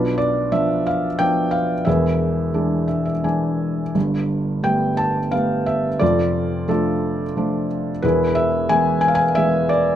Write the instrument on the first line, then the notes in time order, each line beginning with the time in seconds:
felt piano
Already playing: B1 B2 D4 F4 B4
0.18 D5
0.52 F3 B3 D4 E5
0.87 F5
1.19 F3 B3 D4 G5
1.51 F5
1.85 E1 E2 G#4 B4 E5
2.54 E3 G#3 D4
2.88 E5
3.05 E5
3.24 E3 G#3 D4 G#5
3.95 G1 G2
4.63 G3 A3 B3 G5
4.97 A5
5.31 G3 A3 B3 F5
5.66 E5
5.99 F1 F2 F4 A4 D5
6.68 F3 A3 D4 F4 A4
7.37 F3 A3 D4
8.02 E1 E2 E4 G#4 B4
8.35 E5
8.69 E3 G#3 B3 G#5
9.01 G#5
9.08 F5
9.15 G#5
9.35 E3 G#3 B3 E5
9.69 D5